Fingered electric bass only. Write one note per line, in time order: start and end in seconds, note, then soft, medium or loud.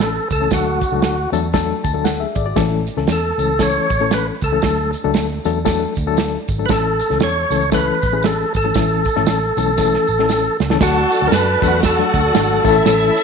0.00 0.18 A1 medium
0.30 0.46 C#2 medium
0.51 0.82 D2 medium
0.92 1.00 C#2 medium
1.03 1.26 D2 medium
1.32 1.71 E2 medium
1.85 2.23 D2 medium
2.36 2.52 G#1 medium
2.57 2.88 A1 loud
2.97 3.05 C#2 medium
3.08 3.31 E2 medium
3.38 3.77 C#2 medium
3.90 4.29 A1 medium
4.42 4.58 C#2 medium
4.63 4.94 D2 medium
5.05 5.12 C#2 medium
5.15 5.38 D2 medium
5.45 5.84 E2 medium
5.97 6.36 D2 medium
6.49 6.64 G#1 medium
6.69 7.00 A1 medium
7.10 7.18 C#2 medium
7.20 7.43 E2 medium
7.50 7.89 C#2 medium
8.03 8.42 A1 medium
8.55 8.70 G#1 medium
8.75 9.06 A1 loud
9.17 9.24 G#1 medium
9.27 9.50 A1 medium
9.57 9.96 B1 medium
10.08 10.47 A1 medium
10.60 10.76 C#2 medium
10.81 11.04 D2 loud
11.22 11.30 D2 medium
11.32 11.55 F#2 medium
11.62 12.01 E2 medium
12.14 12.30 D2 medium
12.35 12.58 G#1 medium
12.65 12.81 A1 medium
12.85 13.08 A1 loud